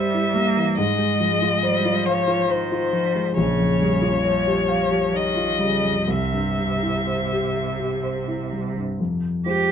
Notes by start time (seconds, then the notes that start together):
Already playing: G2 E3 G3 E4 G4 C5 E5
0.14 E4
0.34 G3 A#3
0.56 E3
0.77 G#2 G#3 D#5
0.99 G#3
1.20 F3
1.42 F4
1.63 G3 C5
1.85 F4
2.05 F3 C#5 F5
2.28 F4
2.49 D#3 C5
2.72 F4
2.93 F3
3.15 G#3
3.36 A#1 C#3 C#5
3.59 F2
3.80 G3
4.02 F4
4.24 F3 C#5
4.47 G4
4.68 F5
4.91 G4
5.13 D#3 C#5 D#5
5.36 F4
5.59 C#3 G3
5.83 F2
6.08 C2 C3 E5
6.33 G2
6.58 G3
6.83 E4
7.07 C5
7.32 G4
7.56 E5
7.80 G4
8.03 C5
8.28 E4
8.52 G3
8.76 G2
9.00 F2
9.45 G#3 F4 G4 C5